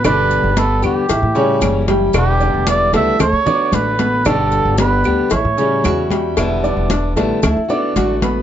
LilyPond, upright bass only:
\new Staff \with { instrumentName = "Upright bass" } { \clef bass \time 4/4 \key d \major \tempo 4 = 114 g,,8. g,,8. e,16 r16 a,,16 a,8. fis,,4 | e,,8. e,,8. cis,16 r16 d,16 d8. a,,4 | g,,8. g,,8. d,16 r16 a,,16 a,8. e,4 | e,,8. e,,8. a,,16 r16 d,16 d8. a,,4 | }